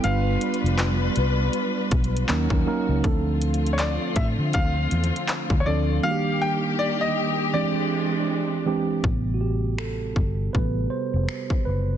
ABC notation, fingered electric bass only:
X:1
M:4/4
L:1/16
Q:"Swing 16ths" 1/4=80
K:Am
V:1 name="Fingered electric bass" clef=bass
G,,,2 z F,,,3 C,,2 z2 B,,,2 _E,, E,, z _D,, | D,,4- D,, z A,, D, D,,2 E,, z2 D,, D,,2 | z16 | A,,,6 G,,,2 A,,,2 z F,,, z2 ^F,,,2 |]